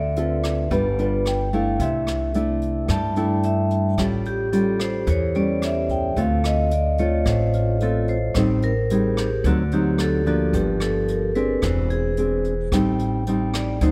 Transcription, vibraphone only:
Already playing: D5 E5
0.19 B4
1.27 G5
1.53 F5
1.81 E5
2.91 A5
3.17 G5
3.45 E5
4.27 G4
4.55 A4
4.81 C5
5.10 C#5
5.36 D5
5.64 E5
5.91 G5
6.18 F5
6.45 D#5
6.73 D5
6.99 C#5
7.28 C5
7.55 F4
7.83 A4
8.09 C5
8.36 C5
8.64 A#4
8.92 G#4
9.18 G4
9.47 F#4
9.73 G4
10.00 A4
10.27 F#4
10.55 G4
10.82 A4
11.10 A#4
11.35 B4
11.64 C5
11.90 G#4
12.74 G5
13.55 D5
13.83 C5

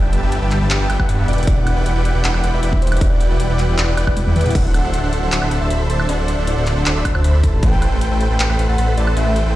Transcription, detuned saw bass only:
Already playing: G1
0.23 G1
0.42 G1
0.61 G1
0.70 G1
0.80 G1
0.90 G1
1.00 G1
1.09 G2
1.28 E1
1.47 E1
1.77 E1
1.96 E1
2.15 E1
2.24 E1
2.34 E1
2.44 E1
2.53 E1
2.63 E1
2.82 E1
3.01 E1
3.30 E1
3.50 E1
3.69 E1
3.78 E1
3.88 E1
3.97 E1
4.07 E1
4.27 E2
4.36 E2
4.55 D1
4.84 D1
5.04 D1
5.23 D1
5.32 D1
5.42 D1
5.51 D1
5.61 D1
5.71 D1
5.90 D1
6.09 D1
6.38 D1
6.57 D1
6.77 D1
6.86 D1
6.96 D1
7.05 D1
7.15 D2
7.24 D2
7.44 A1
7.63 A1
7.92 A1
8.11 A1
8.31 A1
8.40 A1
8.50 A1
8.59 A1
8.69 A1
8.78 A1
8.98 A1
9.17 A1
9.46 A1

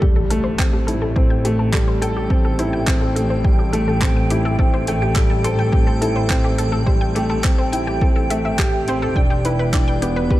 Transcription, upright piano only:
0.03 G3
0.31 A3
0.59 C4
0.88 E4
1.17 C4
1.45 A3
1.73 G3
2.02 A4
2.30 C4
2.59 E4
2.88 C4
3.16 A3
3.45 G3
3.73 A3
4.02 C4
4.31 E4
4.59 C4
4.88 A3
5.16 G3
5.44 A4
5.73 C4
6.01 E4
6.30 C4
6.58 A3
6.87 G3
7.16 A3
7.44 C4
7.73 E4
8.02 C4
8.31 A3
8.59 G4
8.88 C4
9.16 D4
9.45 E4
9.74 D4
10.02 B3
10.31 G3

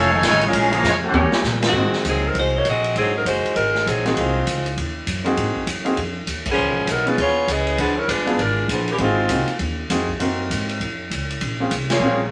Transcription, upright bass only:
Already playing: F1
0.22 A1
0.53 A#1
0.83 F2
1.13 D#2
1.32 muted upright bass stroke
1.44 A#2
1.72 G#2
1.92 muted upright bass stroke
2.05 C#2
2.34 C2
2.65 A#1
2.96 G#1
3.25 F#1
3.44 muted upright bass stroke
3.55 G#1
3.86 A#1
4.16 C2
4.46 C#2
4.77 D#2
5.06 F#2
5.37 G#2
5.55 muted upright bass stroke
5.66 F#2
5.97 F2
6.27 D#2
6.57 C#2
6.68 B1
6.78 G#1
6.87 B1
7.17 D#2
7.47 C#2
7.78 D2
8.08 G1
8.39 G#1
8.68 A#1
8.99 G#1
9.29 C2
9.47 muted upright bass stroke
9.59 D#2
9.90 F2
10.20 F#2
10.50 G#2
10.80 F2
11.10 C#2
11.41 A#1
11.71 C2
12.00 A#1

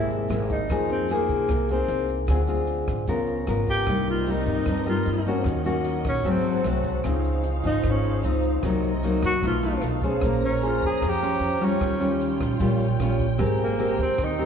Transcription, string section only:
3.87 C4 A#4 D#5
5.46 C#4 F#4 D#5
6.24 C4 A4 F#5
7.05 D#4 C5 F5
8.63 C4 A#4 D#5
9.43 D#4 A4 F5
10.21 C#4 C5 A#5
11.80 F4 C#5 G5
13.39 C4 A#4

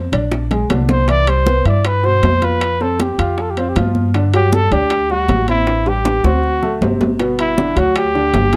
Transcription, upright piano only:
0.13 D4 D5
0.51 G#3 G#4
0.70 D3 D4
1.08 E3 E4
1.28 G3 G4
1.47 B3 B4
1.66 E4 E5
2.03 B2 C5
2.42 F4 F5
2.81 C4 C5
3.19 F4 F5
3.57 C4 C5
3.76 F3 F4
4.15 D3 D4
4.34 F#3 F#4
4.53 G3 G4
4.72 D4 D5
5.10 G3 F#4
5.49 C4 C5
5.86 G3 G4
6.25 C4 C5
6.62 A3 A4
6.82 C3 C4
7.20 B2 B3
7.58 D3 D4
7.76 F#3 F#4
8.15 D3 D4
8.53 F3

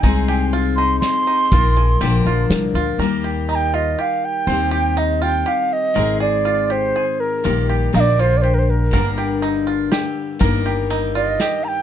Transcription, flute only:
0.03 G#5
0.76 C6
1.00 C6
3.51 A#5
3.55 G5
3.75 D#5
4.01 F5
4.25 G5
4.73 G5
4.98 D#5
5.23 G5
5.48 F5
5.73 D#5
6.21 D5
6.72 C5
7.20 A#4
7.95 F5
8.00 D5
8.20 C5
8.37 D5
8.42 C5
8.54 A#4
8.59 C5
8.70 A#4
11.16 D#5
11.64 A#5
11.68 G5

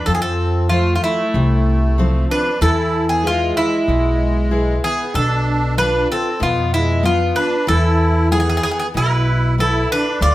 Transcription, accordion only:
0.07 C4
0.14 B3
0.22 C4
0.72 A3
0.97 A3
1.03 A3
2.29 D4
2.61 E4
3.09 B3
3.25 G#3
3.57 G#3
4.84 B3
5.17 D4
5.78 D4
6.11 C4
6.42 B3
6.75 G#3
7.06 B3
7.37 D4
7.70 E4
8.33 B3
8.96 E4
9.60 E4
9.91 D4
10.22 F4

